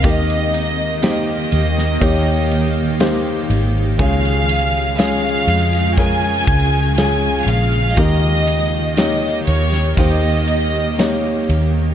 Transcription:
<<
  \new Staff \with { instrumentName = "Violin section" } { \time 4/4 \key ees \mixolydian \tempo 4 = 60 ees''4 ees''2~ ees''8 r8 | f''4 f''4 aes''4 aes''8 f''8 | ees''4 ees''8 des''8 ees''4. r8 | }
  \new Staff \with { instrumentName = "Upright piano" } { \time 4/4 \key ees \mixolydian <bes ees' g' bes'>4 <bes ees' g' c''>4 <bes ees' g' des''>4 <bes ees' g' c''>4 | <aes des' f' aes'>4 <aes des' f' aes'>4 <aes des' f' bes'>4 <aes des' f' aes'>4 | <bes ees' g' bes'>4 <bes ees' g' des''>4 <bes ees' g' c''>4 <bes ees' g' des''>4 | }
  \new Staff \with { instrumentName = "Upright piano" } { \clef bass \time 4/4 \key ees \mixolydian ees4. r2 r8 | des4. r2 r8 | ees4. r2 r8 | }
  \new Staff \with { instrumentName = "Clean electric guitar" } { \time 4/4 \key ees \mixolydian <ees g'>8 ees'8 <bes ees' g'>8 bes8 <bes ees' g'>2 | <des aes'>8 des'8 <aes des' aes'>8 aes8 <aes des' aes'>2 | <ees g'>8 ees'8 <bes ees' g'>8 bes8 <bes ees' g'>2 | }
  \new Staff \with { instrumentName = "Ambient pad" } { \time 4/4 \key ees \mixolydian <ees bes g'>1 | <des aes f'>1 | <ees bes g'>1 | }
  \new Staff \with { instrumentName = "Fingered electric bass" } { \clef bass \time 4/4 \key ees \mixolydian ees,4. ees,8 ees,4. aes,,8 | des,4. f,4 des,4 bes,,8 | ees,4. ees,8 ees,4. ees,8 | }
  \new DrumStaff \with { instrumentName = "Drums" } \drummode { \time 4/4 <bd cymr>16 cymr16 cymr8 <cymr sn>8 cymr16 sn16 <bd cymr>8 cymr8 <cymr sn>8 cymr8 | <bd cymr>16 cymr16 cymr8 <cymr sn>8 cymr16 cymr16 <bd cymr>8 <bd cymr>8 <cymr sn>8 cymr8 | <bd cymr>8 cymr8 <cymr sn>8 cymr16 sn16 <bd cymr>8 cymr8 <cymr sn>8 cymr8 | }
>>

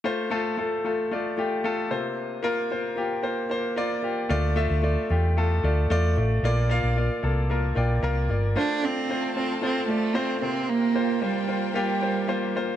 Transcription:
<<
  \new Staff \with { instrumentName = "String section" } { \time 4/4 \key f \major \tempo 4 = 113 << { r1 | r1 | r1 | r1 |
<a' c'' a''>2.~ <a' c'' a''>8 <bes' c'' g''>8~ | <bes' c'' g''>1 | } \\ { r1 | r1 | r1 | r1 |
f'1~ | f'1 | } >> }
  \new Staff \with { instrumentName = "Grand piano" } { \time 4/4 \key f \major <a f' c''>8 <a f' a'>8 <a f' a'>8 <a f' a'>8 <a f' d''>8 <a f' g'>8 <a f' a'>8 <bes f' c''>8~ | <bes f' c''>8 <bes f' bes'>8 <bes f' c''>8 <bes f' g'>8 <bes f' c''>8 <bes f' c''>8 <bes f' d''>8 <bes f' g'>8 | <a f' d''>8 <a f' e''>8 <a f' d''>8 <a f' g'>8 <a f' a'>8 <a f' d''>8 <a f' d''>8 <a f' d''>8 | <bes f' d''>8 <bes f' f''>8 <bes f' d''>8 <bes f' a'>8 <bes f' bes'>8 <bes f' d''>8 <bes f' bes'>8 <bes f' d''>8 |
<a f' c''>8 <a f' d''>8 <a f' c''>8 <a f' c''>8 <a f' c''>8 <a f' d''>8 <a f' c''>8 <bes f' c''>8~ | <bes f' c''>8 <bes f' c''>8 <bes f' c''>8 <bes f' c''>8 <bes f' g'>8 <bes f' c''>8 <bes f' c''>8 <bes f' c''>8 | }
  \new Staff \with { instrumentName = "Grand piano" } { \clef bass \time 4/4 \key f \major r2. r8 c8~ | c4 r2. | d4. r2 r8 | bes,4. r4 g''8 f''4 |
r2. r8 c8~ | c4 r2. | }
  \new Staff \with { instrumentName = "Cello" } { \time 4/4 \key f \major r1 | r1 | r1 | r1 |
d'8 c'4 c'8 c'8 a8 c'8 c'8 | bes4 g4 g4. r8 | }
  \new Staff \with { instrumentName = "Fingered electric bass" } { \clef bass \time 4/4 \key f \major r1 | r1 | d,8. d,8 r16 e,4 d,8 e,8 a,,8 | bes,,8. bes,,8 r16 c,4 bes,,8 c,8 g,,8 |
r1 | r1 | }
>>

